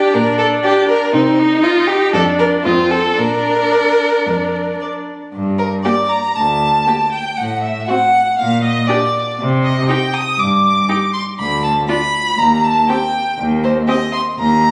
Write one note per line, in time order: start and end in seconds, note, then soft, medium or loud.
0.00 1.11 D4 medium
0.00 0.16 G4 medium
0.14 0.54 A#2 medium
0.14 0.38 A#4 medium
0.39 0.47 A4 medium
0.64 0.88 G4 medium
0.64 0.72 D5 soft
0.89 1.14 A#4 medium
1.14 1.53 C3 medium
1.14 1.40 C4 medium
1.14 1.65 D#4 medium
1.39 2.15 D#4 medium
1.63 1.89 F4 medium
1.63 1.71 D#5 soft
1.88 2.13 G4 medium
2.13 2.54 F2 medium
2.13 2.66 D4 medium
2.13 2.22 A4 medium
2.13 2.22 D5 soft
2.39 2.47 A#4 medium
2.64 3.07 F2 soft
2.64 3.17 C4 medium
2.64 2.93 F4 medium
2.64 2.74 D#5 soft
2.91 3.21 A4 medium
3.18 3.61 A#2 soft
3.18 5.03 D4 soft
3.18 4.81 A#4 medium
3.71 3.79 D5 soft
4.26 4.69 F2 soft
4.81 4.89 D5 soft
5.34 5.76 G2 soft
5.59 5.67 A#4 soft
5.83 5.93 A#3 soft
5.83 5.93 G4 soft
5.83 6.10 D5 medium
6.09 6.36 A#5 medium
6.35 6.79 D2 soft
6.35 7.11 A5 medium
6.87 6.95 A#3 soft
6.87 6.96 G4 soft
7.12 7.38 G5 medium
7.37 7.80 A2 soft
7.37 7.61 F#5 medium
7.62 7.86 E5 medium
7.87 7.98 C4 soft
7.87 7.96 F#4 soft
7.87 8.37 F#5 medium
8.38 8.81 A#2 soft
8.38 8.63 F5 medium
8.63 8.88 D#5 medium
8.87 8.96 D4 soft
8.87 8.98 G4 soft
8.87 9.38 D5 medium
9.40 9.81 C3 medium
9.64 9.87 D#5 soft
9.89 9.97 D#4 soft
9.89 9.98 G4 soft
9.89 10.15 G5 medium
10.14 10.39 D#6 medium
10.38 10.81 G2 soft
10.38 11.13 D6 medium
10.89 10.97 D#4 soft
10.89 10.98 G4 soft
11.13 11.21 C6 medium
11.39 11.81 D2 medium
11.39 11.63 B5 medium
11.64 11.72 A5 medium
11.89 11.97 D4 soft
11.89 11.97 F4 soft
11.89 12.39 B5 medium
12.38 12.81 D#2 medium
12.38 12.65 A#5 medium
12.64 12.89 A5 medium
12.89 12.97 C4 soft
12.89 12.97 G4 soft
12.89 13.38 G5 medium
13.39 13.81 D#2 medium
13.64 13.72 C5 medium
13.88 13.96 C4 medium
13.88 13.96 G4 soft
13.88 14.12 D#5 medium
14.13 14.21 C6 medium
14.39 14.71 D#2 medium
14.39 14.71 A#5 medium